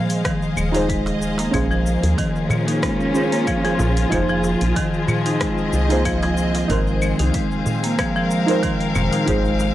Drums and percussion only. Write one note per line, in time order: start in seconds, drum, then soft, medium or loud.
0.10 open hi-hat soft
0.10 shaker soft
0.25 kick loud
0.25 cross-stick medium
0.25 open hi-hat medium
0.25 shaker soft
0.42 shaker soft
0.57 claves medium
0.57 shaker medium
0.75 open hi-hat soft
0.75 shaker soft
0.89 kick loud
0.89 open hi-hat medium
0.89 shaker soft
1.06 open hi-hat soft
1.06 darbuka ka medium
1.06 darbuka tek medium
1.06 shaker soft
1.22 shaker medium
1.38 open hi-hat soft
1.38 darbuka tek medium
1.38 shaker soft
1.54 kick loud
1.54 open hi-hat medium
1.54 claves medium
1.54 shaker soft
1.71 shaker soft
1.86 shaker medium
2.03 open hi-hat soft
2.03 darbuka ka soft
2.03 shaker soft
2.18 kick loud
2.18 open hi-hat medium
2.18 shaker soft
2.36 shaker soft
2.50 darbuka dum medium
2.50 claves medium
2.50 shaker medium
2.68 open hi-hat soft
2.68 shaker soft
2.82 kick loud
2.82 cross-stick medium
2.82 open hi-hat medium
2.82 shaker soft
3.00 shaker soft
3.15 shaker medium
3.32 open hi-hat soft
3.32 shaker soft
3.47 kick loud
3.47 open hi-hat soft
3.47 claves medium
3.47 shaker soft
3.65 open hi-hat soft
3.65 shaker soft
3.79 darbuka ka soft
3.79 darbuka tek medium
3.79 darbuka dum medium
3.79 shaker medium
3.97 open hi-hat soft
3.97 shaker soft
4.12 kick loud
4.12 open hi-hat soft
4.12 claves medium
4.12 shaker soft
4.29 shaker soft
4.44 darbuka tek medium
4.44 shaker medium
4.61 open hi-hat soft
4.61 shaker soft
4.76 kick loud
4.76 open hi-hat medium
4.76 shaker soft
4.94 shaker soft
5.08 darbuka tek soft
5.08 darbuka dum loud
5.08 claves medium
5.08 shaker medium
5.26 open hi-hat soft
5.26 shaker soft
5.41 kick loud
5.41 cross-stick medium
5.41 open hi-hat soft
5.41 shaker soft
5.58 shaker soft
5.73 shaker medium
5.90 open hi-hat soft
5.90 shaker soft
6.05 kick loud
6.05 open hi-hat medium
6.05 claves medium
6.05 shaker soft
6.22 open hi-hat soft
6.22 darbuka ka medium
6.22 darbuka tek medium
6.22 shaker soft
6.37 shaker medium
6.55 open hi-hat soft
6.55 darbuka tek medium
6.55 shaker soft
6.70 kick loud
6.70 open hi-hat medium
6.70 shaker soft
6.87 shaker soft
7.02 claves medium
7.02 shaker medium
7.19 open hi-hat soft
7.19 darbuka ka soft
7.19 shaker soft
7.34 kick loud
7.34 open hi-hat medium
7.34 shaker soft
7.51 shaker soft
7.66 darbuka dum medium
7.66 shaker medium
7.84 open hi-hat soft
7.84 shaker soft
7.99 kick loud
7.99 cross-stick medium
7.99 open hi-hat medium
7.99 claves medium
7.99 shaker soft
8.16 shaker soft
8.31 shaker medium
8.48 open hi-hat soft
8.48 shaker soft
8.63 kick loud
8.63 open hi-hat medium
8.63 shaker soft
8.81 open hi-hat soft
8.81 shaker soft
8.95 darbuka ka medium
8.95 darbuka tek medium
8.95 darbuka dum medium
8.95 claves medium
8.95 shaker medium
9.13 open hi-hat soft
9.13 shaker soft
9.28 kick loud
9.28 open hi-hat medium
9.28 shaker soft
9.45 shaker soft
9.60 darbuka tek medium
9.60 shaker medium